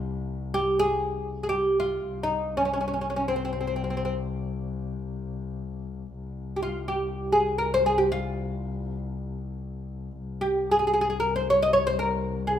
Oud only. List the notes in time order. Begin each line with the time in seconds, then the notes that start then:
0.54 G4
0.79 G#4
1.43 G#4
1.49 G4
1.80 F4
2.23 D#4
2.57 C#4
2.65 C#4
2.73 C#4
2.81 C#4
2.88 C#4
2.94 C#4
3.01 C#4
3.10 C#4
3.16 C#4
3.28 C4
3.36 C4
3.45 C4
3.53 C4
3.61 C4
3.67 C4
3.76 C4
3.84 C4
3.90 C4
3.97 C4
4.05 C4
6.56 G4
6.63 F4
6.88 G4
7.32 G#4
7.58 A#4
7.74 C5
7.86 G#4
7.98 G4
8.12 F4
10.41 G4
10.71 G#4
10.79 G#4
10.87 G#4
10.94 G#4
11.01 G#4
11.10 G#4
11.20 A#4
11.36 C5
11.50 C#5
11.62 D#5
11.73 C#5
11.87 C5
11.99 A#4
12.47 G#4